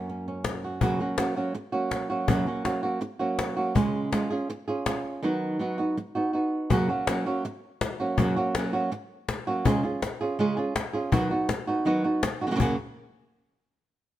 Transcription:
Already playing: nylon-string guitar F#2 A#3 F#4
0.09 nylon-string guitar C#4
0.28 nylon-string guitar C#4
0.44 cajon slap
0.63 nylon-string guitar F#4, cajon slap
0.81 nylon-string guitar F#2 C#3 F#3 A#3 C#4 F#4, cajon bass
0.99 nylon-string guitar F#3 A#3 C#4 F#4
1.18 nylon-string guitar F#3 A#3 C#4 F#4, cajon slap
1.36 nylon-string guitar F#3 A#3 C#4 F#4, cajon slap
1.54 muted nylon-string guitar stroke
1.72 nylon-string guitar F#3 A#3 C#4 F#4
1.91 cajon slap
2.10 nylon-string guitar F#3 A#3 C#4 F#4
2.28 nylon-string guitar F#2 C#3 F#3 A#3 C#4 F#4, cajon bass
2.46 nylon-string guitar F#3 A#3 C#4 F#4, cajon slap
2.65 nylon-string guitar F#3 A#3 C#4 F#4, cajon slap
2.83 nylon-string guitar F#3 A#3 C#4 F#4, cajon slap
3.01 muted nylon-string guitar stroke
3.19 nylon-string guitar F#3 A#3 C#4 F#4
3.39 cajon slap
3.57 nylon-string guitar F#3 A#3 C#4 F#4, cajon slap
3.75 nylon-string guitar C#3 G#3 C#4 F4 G#4, cajon bass
3.94 cajon slap
4.12 nylon-string guitar G#3 C#4 F4 G#4, cajon slap
4.30 nylon-string guitar C#4 F4 G#4
4.50 muted nylon-string guitar stroke
4.68 nylon-string guitar C#4 F4 G#4
4.86 nylon-string guitar C#4 F4 G#4, cajon slap
5.23 nylon-string guitar D#3 F#3 B3 D#4 F#4
5.59 nylon-string guitar F#3 B3 D#4 F#4
5.78 nylon-string guitar B3 D#4 F#4
5.97 muted nylon-string guitar stroke
6.15 nylon-string guitar B3 D#4 F#4
6.33 nylon-string guitar B3 D#4 F#4
6.70 nylon-string guitar F#2 C#3 F#3 A#3 C#4 F#4, cajon bass
6.89 nylon-string guitar F#3 A#3 C#4 F#4
7.07 nylon-string guitar F#3 A#3 C#4 F#4, cajon slap
7.26 nylon-string guitar F#3 A#3 C#4 F#4
7.45 muted nylon-string guitar stroke
7.81 cajon slap
8.00 nylon-string guitar F#3 A#3 C#4 F#4
8.18 nylon-string guitar F#2 C#3 F#3 A#3 C#4 F#4, cajon bass
8.36 nylon-string guitar F#3 A#3 C#4 F#4, cajon slap
8.55 nylon-string guitar F#3 A#3 C#4 F#4, cajon slap
8.73 nylon-string guitar F#3 A#3 C#4 F#4, cajon slap
8.92 muted nylon-string guitar stroke
9.29 cajon slap
9.47 nylon-string guitar F#3 A#3 C#4 F#4
9.65 nylon-string guitar C#3 G#3 C#4 F4 G#4, cajon bass
9.83 nylon-string guitar C#4 F4 G#4, cajon slap
10.02 muted nylon-string guitar stroke, cajon slap
10.21 nylon-string guitar C#4 F4 G#4, cajon slap
10.39 nylon-string guitar C#3 G#3 C#4 F4 G#4
10.57 nylon-string guitar C#4 F4 G#4
10.75 muted nylon-string guitar stroke, cajon slap
10.93 nylon-string guitar C#4 F4 G#4
11.12 nylon-string guitar D#3 F#3 B3 D#4 F#4, cajon bass
11.31 nylon-string guitar B3 D#4 F#4
11.49 muted nylon-string guitar stroke, cajon slap
11.67 nylon-string guitar B3 D#4 F#4, cajon slap
11.85 nylon-string guitar D#3 F#3 B3 D#4 F#4
12.04 nylon-string guitar B3 D#4 F#4
12.23 muted nylon-string guitar stroke, cajon slap
12.41 nylon-string guitar B3 D#4 F#4, cajon slap
12.47 nylon-string guitar C#3 F#3 A#3 C#4 F#4
12.51 nylon-string guitar C#3 F#3 A#3 C#4 F#4
12.56 nylon-string guitar C#3 F#3 A#3 C#4 F#4
12.60 nylon-string guitar F#2 C#3 F#3 A#3 C#4 F#4, cajon bass

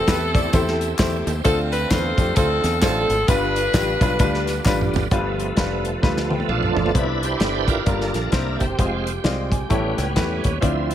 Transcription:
Already playing: grand piano E3, tonewheel organ E3 A3 C4 G4, saxophone section C4 A4
0.07 fingered electric bass E2, grand piano A3 E4 G4 B4, kick, snare, clap, closed hi-hat, tambourine
0.34 grand piano A3 E4 G4 D5, tonewheel organ A5, kick, closed hi-hat, tambourine
0.52 fingered electric bass E2, grand piano A3 E4 G4 C5, tonewheel organ G5, kick, closed hi-hat, tambourine
0.68 snare
0.81 tonewheel organ E5, closed hi-hat, tambourine
0.98 fingered electric bass E2, grand piano A3 E4 G4 C5, tonewheel organ D5, kick, snare, clap, closed hi-hat, tambourine
1.26 fingered electric bass D#2, tonewheel organ C5, closed hi-hat, tambourine
1.44 fingered electric bass D2, tonewheel organ D3 A3 C4 F4, grand piano D3 A3 D4 F4 C5, saxophone section C4 F4 A4, kick, closed hi-hat, tambourine
1.71 saxophone section B4, closed hi-hat, tambourine
1.90 fingered electric bass E2, grand piano A3 D4 F4 B4, saxophone section F4 A4 C5, kick, snare, clap, closed hi-hat, tambourine
2.17 fingered electric bass F2, grand piano A3 D4 F4 G4, kick, closed hi-hat, tambourine
2.36 fingered electric bass D2, grand piano A3 D4 F4 C5, saxophone section C4 F4 A4, kick, closed hi-hat, tambourine
2.64 fingered electric bass E2, snare, closed hi-hat, tambourine
2.82 fingered electric bass A1, grand piano A3 D4 F4 C5, saxophone section C4 F4 A4, kick, snare, clap, closed hi-hat, tambourine
3.09 fingered electric bass G#1, closed hi-hat, tambourine
3.27 fingered electric bass G1, grand piano G2 G3 D4 F4 B4, tonewheel organ D3 G3 B3 F4, saxophone section D4 F4 B4, kick, closed hi-hat, tambourine
3.56 closed hi-hat, tambourine
3.74 fingered electric bass A1, grand piano G3 D4 F4 G4, kick, snare, clap, closed hi-hat, tambourine
4.01 fingered electric bass B1, grand piano G3 D4 F4 B4, kick, closed hi-hat, tambourine
4.19 fingered electric bass D2, grand piano G3 D4 F4 B4, kick, closed hi-hat, tambourine
4.34 snare
4.47 snare, closed hi-hat, tambourine
4.65 fingered electric bass A1, grand piano G3 D4 F4 B4, kick, snare, clap, tambourine
4.81 mid tom
4.93 fingered electric bass G#1, floor tom, tambourine
5.11 fingered electric bass G1, grand piano G2 G3 D4 F4 B4, tonewheel organ F3 A3 B3, kick, closed hi-hat
5.40 closed hi-hat
5.57 fingered electric bass F1, grand piano G3 D4 F4 B4, kick, snare, closed hi-hat
5.85 closed hi-hat
6.02 fingered electric bass D2, grand piano G3 D4 F4 B4, kick, snare
6.17 snare
6.31 grand piano B4 G5, high tom
6.40 high tom
6.48 fingered electric bass B1, tonewheel organ D4 F4 A4, grand piano A4 F5, mid tom
6.63 mid tom
6.75 fingered electric bass G1, grand piano F4 D5, floor tom
6.86 floor tom
6.94 fingered electric bass C2, grand piano C3 B3 D4 E4 C5, tonewheel organ D4 E4 B4, kick, closed hi-hat
7.23 tonewheel organ E4 G4 C5, closed hi-hat
7.40 fingered electric bass G1, grand piano B3 D4 E4 A4, snare, closed hi-hat
7.68 tonewheel organ D4 F4 A#4, kick, closed hi-hat
7.85 fingered electric bass G1, grand piano G2 G3 D4 F4 A#4, tonewheel organ A#3 F4 A4, kick, closed hi-hat
8.01 snare
8.14 fingered electric bass A#1, snare, closed hi-hat
8.32 fingered electric bass C2, grand piano C3 A#3 D4 E4 C5, tonewheel organ A#3 D4 E4, kick, snare, closed hi-hat
8.60 fingered electric bass F#1, tonewheel organ C4 G4, kick, closed hi-hat
8.78 fingered electric bass F1, grand piano G#3 C4 F4 C5, tonewheel organ G#3 C4 F4, kick, closed hi-hat
9.07 closed hi-hat
9.24 fingered electric bass C2, grand piano G#3 C4 F4 D5, snare, closed hi-hat
9.52 grand piano G#5, kick, closed hi-hat
9.69 fingered electric bass A1, grand piano A2 A3 E4 G4 C#5 A5, tonewheel organ G3 B3 C#4, kick, closed hi-hat
9.98 fingered electric bass C#2, grand piano G5, snare, closed hi-hat
10.15 fingered electric bass E2, grand piano A3 E4 G4 B4 E5, kick, snare, closed hi-hat
10.44 fingered electric bass D#2, grand piano C#5, kick, closed hi-hat
10.61 fingered electric bass D2, grand piano D3 C4 E4 F4 D5, tonewheel organ F3 C4 E4, kick, closed hi-hat
10.91 closed hi-hat

